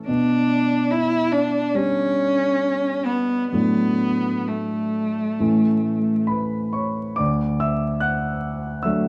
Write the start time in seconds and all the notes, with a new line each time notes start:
Already playing: E3 A3
0.07 B2 D4
0.91 E4
1.32 D4
1.74 G3 C#4 D4
3.05 B3
3.51 A2 F#3 A3 B3 D4
4.48 A3
5.40 A2 E3 A3 C#4
6.27 B4 B5
6.73 C#5 C#6
7.16 D2 D5 D6
7.60 E5 E6
8.00 F#5 F#6
8.83 F#3 A3 D4 E5 E6